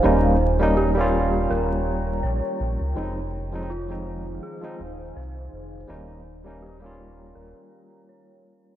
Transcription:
Already playing: ambient pad D#4
0.03 analog synth bass D#1, tine electric piano G3 A#3 C#4 D#4, synth bell D#4, ambient pad C#5 G5 A#5
0.60 tine electric piano G3 A#3 C#4 D#4
0.77 synth bell G4
0.95 tine electric piano G3 A#3
0.99 tine electric piano C#4 F4
1.50 analog synth bass D#1, synth bell A#4
2.23 analog synth bass A#1, synth bell C#5
2.60 analog synth bass A#1
2.81 analog synth bass C#2
2.95 analog synth bass F1, tine electric piano F3 G#3 C4 D#4, synth bell D#4, ambient pad D#4 C5 F5 G#5
3.52 tine electric piano F3 G#3 C4 D#4
3.70 synth bell F4
3.89 tine electric piano F3 G#3 C4 D#4
4.43 synth bell G#4
4.61 tine electric piano F3 G#3 C4 D#4
4.79 analog synth bass D#1
5.16 analog synth bass C2, synth bell C5
5.52 analog synth bass F1
5.87 analog synth bass D#1, tine electric piano G3 A#3 C#4 D#4, synth bell D#4, ambient pad C#5 G5 A#5
6.44 tine electric piano G3 A#3 C#4 D#4
6.62 synth bell G4
6.80 tine electric piano G3 A#3
6.84 tine electric piano C#4 F4
7.35 analog synth bass D#1, synth bell A#4
8.09 synth bell C#5

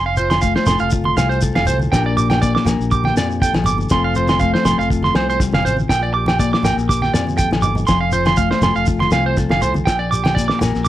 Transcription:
Already playing: fingered electric bass F1
0.06 clean electric guitar F5
0.17 clean electric guitar F4 C5, shekere
0.30 clean electric guitar C6, snare, high conga, low agogo, shekere
0.42 clean electric guitar A3 F5, kick, shekere
0.56 clean electric guitar C5, snare
0.66 fingered electric bass F1, clean electric guitar A4 C6, snare, low conga, low agogo, shekere
0.79 fingered electric bass F1, clean electric guitar F5, shekere
0.90 clean electric guitar F4, kick, shekere
1.04 clean electric guitar C6, high conga
1.17 fingered electric bass C2, clean electric guitar C3 F5, snare, low agogo, shekere
1.29 clean electric guitar C5, shekere
1.41 clean electric guitar A4, kick, shekere
1.55 fingered electric bass F1, clean electric guitar F5, snare, high conga, low agogo
1.65 fingered electric bass C2, clean electric guitar C5, low conga, shekere
1.79 high conga, shekere
1.92 fingered electric bass A#1, clean electric guitar A#2 A#3 D4 G4 A#4 G5, kick, snare, low agogo, shekere
2.06 clean electric guitar D5
2.16 clean electric guitar G4 D6, shekere
2.30 clean electric guitar G5, snare, high conga, low agogo, shekere
2.42 clean electric guitar A#3 D5, kick, shekere
2.55 clean electric guitar D6, snare
2.65 fingered electric bass A#1, clean electric guitar A#4, muted clean electric guitar stroke, snare, low conga, low agogo, shekere
2.80 fingered electric bass A#1, shekere
2.91 clean electric guitar G4 D6, kick, shekere
3.04 clean electric guitar G5, snare, high conga
3.17 fingered electric bass F2, clean electric guitar F3 D5, snare, low agogo, shekere
3.31 shekere
3.42 clean electric guitar A4 G5, kick, shekere
3.54 fingered electric bass A#1, snare, high conga, low agogo
3.64 fingered electric bass G1, clean electric guitar D6, low conga, shekere
3.78 high conga, shekere
3.89 fingered electric bass F1, clean electric guitar F3 A3 C4 F4 C6, kick, snare, low agogo, shekere
3.94 clean electric guitar A4
4.04 clean electric guitar F5
4.15 clean electric guitar F4 C5, shekere
4.28 clean electric guitar C6, snare, high conga, low agogo, shekere
4.40 clean electric guitar A3 F5, kick, shekere
4.54 clean electric guitar C5, snare
4.65 fingered electric bass F1, clean electric guitar A4 C6, snare, low conga, low agogo, shekere
4.79 fingered electric bass F1, clean electric guitar F5, shekere
4.90 clean electric guitar F4, kick, shekere
5.02 clean electric guitar C6, snare, high conga
5.15 fingered electric bass C2, clean electric guitar C3 C5, snare, low agogo
5.30 clean electric guitar C5, shekere
5.40 clean electric guitar G3, kick, snare, shekere
5.53 fingered electric bass F1, clean electric guitar F5, snare, high conga, low agogo
5.62 fingered electric bass A1, clean electric guitar C5, muted clean electric guitar stroke, low conga
5.67 shekere
5.77 high conga, shekere
5.89 fingered electric bass A#1, clean electric guitar A#2 G5, kick, snare, low agogo, shekere
6.03 clean electric guitar D5
6.14 clean electric guitar G4 D6
6.26 clean electric guitar G5, snare, high conga, low agogo, shekere
6.39 clean electric guitar A#3 D5, kick, shekere
6.53 clean electric guitar D6, snare
6.63 fingered electric bass A#1, clean electric guitar A#4 G5, snare, low conga, low agogo, shekere
6.77 fingered electric bass A#1, shekere
6.89 clean electric guitar G4 D6, kick, shekere
7.02 clean electric guitar G5, snare, high conga
7.13 fingered electric bass F2, clean electric guitar F3 D5, snare, low agogo, shekere
7.27 high conga, shekere
7.37 clean electric guitar A4 G5, kick, high conga, shekere
7.51 fingered electric bass A#1, snare, high conga, low agogo
7.62 fingered electric bass G1, clean electric guitar D6, low conga, shekere
7.75 low conga, shekere
7.87 fingered electric bass F1, clean electric guitar F3 C6, kick, snare, low agogo, shekere
8.01 clean electric guitar F5
8.12 clean electric guitar F4 C5, shekere
8.25 clean electric guitar C6, snare, high conga, low agogo, shekere
8.37 clean electric guitar A3 F5, kick, shekere
8.51 clean electric guitar C5, snare
8.62 fingered electric bass F1, clean electric guitar A4 C6, snare, low conga, low agogo, shekere
8.75 fingered electric bass F1, clean electric guitar F5, shekere
8.86 clean electric guitar F4, kick, shekere
9.00 clean electric guitar C6, snare, high conga
9.11 fingered electric bass C2, clean electric guitar C3 F5, snare, low agogo, shekere
9.26 clean electric guitar C5
9.37 clean electric guitar A4, kick, snare, shekere
9.49 fingered electric bass F1, clean electric guitar F5, snare, high conga, low agogo
9.62 fingered electric bass C2, clean electric guitar C5, shekere
9.74 high conga, shekere
9.85 fingered electric bass A#1, clean electric guitar A#2 G5, kick, snare, low agogo, shekere
9.99 clean electric guitar D5
10.11 clean electric guitar G4 D6, shekere
10.24 clean electric guitar G5, snare, high conga, low agogo, shekere
10.35 clean electric guitar A#3 D5, kick, shekere
10.48 clean electric guitar D6, snare
10.59 fingered electric bass A#1, muted clean electric guitar stroke, snare, low conga, low agogo, shekere
10.64 clean electric guitar A#4
10.75 fingered electric bass A#1, snare, shekere
10.85 clean electric guitar D6, shekere

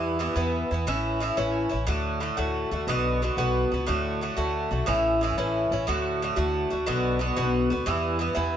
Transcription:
Already playing: upright bass E2, bouzouki G2 E3 B3 E4
0.19 bouzouki G2 E3 B3 E4
0.36 upright bass E2, bouzouki G2 E3 B3 E4
0.71 upright bass E2, bouzouki E3 B3 E4
0.86 upright bass A1, bouzouki A2 E3 C#4 E4
1.20 bouzouki A2 E3 C#4 E4
1.37 upright bass A1, bouzouki A2 E3 C#4 E4
1.69 upright bass A1, bouzouki E3 C#4 E4
1.87 upright bass D2, bouzouki A2 D3 A3 F#4
2.20 bouzouki A2 D3 A3 F#4
2.37 upright bass D2, bouzouki A2 D3 A3 F#4
2.71 upright bass D2, bouzouki D3 A3 F#4
2.87 upright bass B1, bouzouki B2 D3 B3 F#4
3.22 bouzouki B2 D3 B3 F#4
3.37 upright bass B1, bouzouki B2 D3 B3 F#4
3.72 upright bass C#2, bouzouki D3 B3 F#4
3.87 upright bass D2, bouzouki A2 D3 A3 F#4
4.21 bouzouki A2 D3 A3 F#4
4.37 upright bass D2, bouzouki A2 D3 A3 F#4
4.71 upright bass B1, bouzouki D3 A3 F#4
4.86 upright bass A1, bouzouki A2 E3 C#4 E4
5.21 bouzouki A2 E3 C#4 E4
5.38 upright bass A1, bouzouki A2 E3 C#4 E4
5.71 upright bass A1, bouzouki E3 C#4 E4
5.87 upright bass D2, bouzouki A2 D3 A3 F#4
6.22 bouzouki A2 D3 A3 F#4
6.36 upright bass D2, bouzouki A2 D3 A3 F#4
6.70 upright bass D2, bouzouki D3 A3 F#4
6.86 upright bass B1, bouzouki B2 D3 B3 F#4
7.19 bouzouki B2 D3 B3 F#4
7.36 upright bass B1, bouzouki B2 D3 B3 F#4
7.70 upright bass D2, bouzouki D3 B3 F#4
7.86 upright bass E2, bouzouki G2 E3 B3 E4
8.19 bouzouki G2 E3 B3 E4
8.35 upright bass E2, bouzouki G2 E3 B3 E4

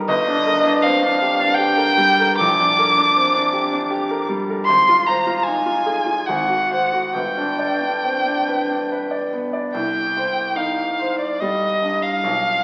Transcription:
Already playing: grand piano G3 D4 D#4 G4 A#4
0.08 grand piano G1, violin D#5
0.27 grand piano D4
0.47 grand piano A#4
0.65 grand piano D4
0.82 grand piano C4, violin F5
1.03 grand piano D4
1.22 grand piano G4
1.40 grand piano D4
1.54 grand piano G4, violin G5
1.77 grand piano A#4
1.97 grand piano G3
2.20 grand piano A#4
2.38 grand piano A#1, violin D6
2.60 grand piano D4
2.79 grand piano A#4
2.98 grand piano D4
3.16 grand piano C4
3.34 grand piano D4
3.53 grand piano G4
3.72 grand piano D4
3.90 grand piano G4
4.11 grand piano A#4
4.29 grand piano G3
4.50 grand piano A#4
4.65 grand piano G#1, violin C6
4.89 grand piano F4
5.06 grand piano C5, violin A#5
5.27 grand piano F4
5.37 violin A#5
5.44 grand piano D#4, violin G#5
5.66 grand piano F4
5.86 grand piano G#4
6.06 grand piano F4
6.27 grand piano G#1, violin F#5
6.48 grand piano F#4
6.71 grand piano C5
6.92 grand piano F#4
7.13 grand piano G1, violin G5
7.37 grand piano D4
7.59 grand piano D5
7.81 grand piano D4
8.04 grand piano C4
8.26 grand piano D4
8.48 grand piano B4
8.69 grand piano D4
8.92 grand piano B4
9.11 grand piano D5
9.33 grand piano B3
9.53 grand piano D5
9.74 grand piano C2, violin G5
10.17 grand piano C5
10.55 grand piano D#4, violin F5
10.99 grand piano C5
11.19 violin D5
11.40 grand piano G3, violin D#5
11.82 grand piano G2
12.02 violin F5
12.24 grand piano B1

